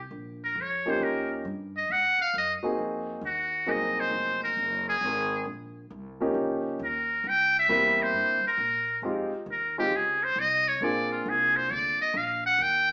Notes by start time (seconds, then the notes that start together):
0.11 A#1
0.44 A#4
0.55 F2
0.61 C#5
0.85 F3 A#3 C#4 D#4 G4
0.90 C5
1.00 D#2 A#4
1.45 G2
1.77 D#5
1.89 G#2 F#5
2.19 F5, muted upright bass stroke
2.34 F#2
2.38 D#5
2.63 A#3 C4 D#4 F#4 G#4, muted upright bass stroke
2.79 F2
3.21 D#2
3.26 F#4
3.66 C2 F#3 A#3 C4 D#4 G#4
3.70 D#5
4.00 C5
4.11 F1
4.44 A#4
4.57 F#1
4.89 G#4
5.01 G#1
5.45 A#1
5.90 C2
6.20 F3 A#3 C#4 D#4 G4
6.34 C#2
6.79 D#2
6.84 A#4
7.24 C2
7.29 G5
7.59 E5
7.69 E2 G3 A#3 C4 E4 G4
8.02 C5
8.14 G2
8.43 A#4, muted upright bass stroke
8.58 A#2
9.02 F2 G#3 C4 D#4 F4 G4
9.31 muted upright bass stroke
9.46 D#2
9.51 A#4
9.78 G#3 C4 D#4 F4 G4
9.91 C#2
9.96 G#4
10.23 C5
10.36 C2 D#5
10.68 C#5
10.81 A#1 A#3 C4 D4 F4 G#4 D5
11.12 F4
11.26 C2 G#4
11.56 C5
11.70 D2 D5
12.00 D#5, muted upright bass stroke
12.14 A#1 F5
12.46 F#5
12.58 D#2 G5